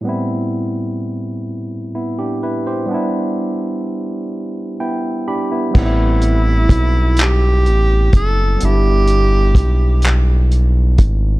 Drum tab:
CC |------|------|x-----|------|
HH |------|------|-xxxxx|xxxxxx|
CP |------|------|---x--|---x--|
BD |------|------|o-o--o|--o--o|